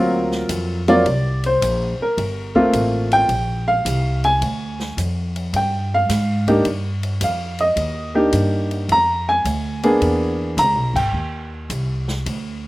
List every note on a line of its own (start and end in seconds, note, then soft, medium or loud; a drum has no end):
0.00 0.47 D2 medium
0.00 0.80 F#3 medium
0.00 0.80 A#3 medium
0.00 0.80 C4 medium
0.00 0.80 F4 medium
0.00 0.46 A#4 medium
0.32 snare soft
0.49 1.03 F2 medium
0.49 kick soft
0.49 hi-hat pedal medium
0.49 ride medium
0.88 1.04 F#3 medium
0.88 1.04 A#3 medium
0.88 1.04 C4 medium
0.88 1.04 F4 medium
0.88 1.40 D5 loud
0.88 ride soft
1.05 1.59 C2 medium
1.05 kick soft
1.05 ride medium
1.44 1.97 C5 medium
1.44 ride soft
1.61 1.97 A#1 medium
1.61 kick soft
1.61 hi-hat pedal medium
1.61 ride medium
1.99 2.71 A#4 medium
1.99 muted upright bass stroke soft
2.17 2.72 G1 medium
2.17 kick soft
2.17 ride medium
2.55 3.26 A3 medium
2.55 3.26 A#3 medium
2.55 3.26 C4 medium
2.55 3.26 F4 medium
2.55 kick medium
2.73 3.27 A1 medium
2.73 kick soft
2.73 hi-hat pedal medium
2.73 ride medium
3.12 3.64 G5 loud
3.12 ride soft
3.29 3.83 A#1 medium
3.29 kick soft
3.29 ride medium
3.68 4.20 F5 medium
3.85 4.39 C2 medium
3.85 kick soft
3.85 hi-hat pedal medium
3.85 ride medium
4.24 4.94 G#5 medium
4.24 ride soft
4.41 4.96 D2 medium
4.41 kick soft
4.41 ride medium
4.80 snare soft
4.97 5.51 F2 medium
4.97 kick soft
4.97 hi-hat pedal medium
4.97 ride medium
5.36 ride soft
5.53 6.08 G2 medium
5.53 5.92 G5 medium
5.53 kick soft
5.53 ride medium
5.94 6.45 F5 medium
6.09 6.64 G#2 medium
6.09 kick soft
6.09 snare soft
6.09 hi-hat pedal medium
6.09 ride medium
6.47 6.64 A#3 medium
6.47 6.64 D4 medium
6.47 6.64 D#4 medium
6.47 6.64 G4 medium
6.47 kick soft
6.47 ride soft
6.65 7.20 G2 medium
6.65 kick soft
6.65 ride medium
7.03 ride soft
7.21 7.75 F2 medium
7.21 7.59 F5 medium
7.21 kick soft
7.21 hi-hat pedal soft
7.21 ride medium
7.59 8.12 D#5 medium
7.59 ride soft
7.76 8.31 D#2 medium
7.76 kick soft
7.76 ride medium
8.14 8.85 A#3 medium
8.14 8.86 D4 medium
8.14 8.86 D#4 medium
8.14 8.86 G4 medium
8.33 8.87 G2 medium
8.33 kick soft
8.33 hi-hat pedal soft
8.33 ride medium
8.71 ride soft
8.89 9.43 F2 medium
8.89 9.28 A#5 loud
8.89 kick soft
8.89 ride medium
9.29 9.80 G#5 medium
9.45 9.99 D2 medium
9.45 kick soft
9.45 hi-hat pedal medium
9.45 ride medium
9.83 10.54 A#3 medium
9.83 10.54 B3 medium
9.83 10.54 D4 medium
9.83 10.54 G#4 medium
9.83 ride soft
10.01 10.56 E2 medium
10.01 ride medium
10.57 10.75 C#2 medium
10.57 10.95 A#5 loud
10.57 kick soft
10.57 hi-hat pedal medium
10.57 ride medium
10.75 10.93 B1 medium
10.94 11.12 G#1 medium
10.94 11.48 G5 medium
10.94 kick medium
10.94 crash medium
11.13 11.68 D#2 medium
11.70 12.24 C2 medium
11.70 kick soft
11.70 hi-hat pedal medium
11.70 ride medium
12.08 snare soft
12.26 12.68 D2 medium
12.26 kick soft
12.26 ride medium